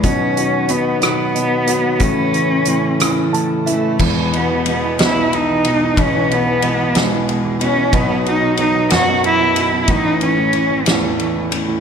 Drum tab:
CC |------|------|x-----|------|
RD |------|------|-xxxxx|xxxxxx|
HH |xxxxxx|xxxxxx|------|------|
SD |---r--|---r--|---o--|---o--|
BD |o-----|o-----|o-----|o-----|

CC |------|------|
RD |xxxxxx|xxxxxx|
HH |------|------|
SD |---o--|---o--|
BD |o-----|o-----|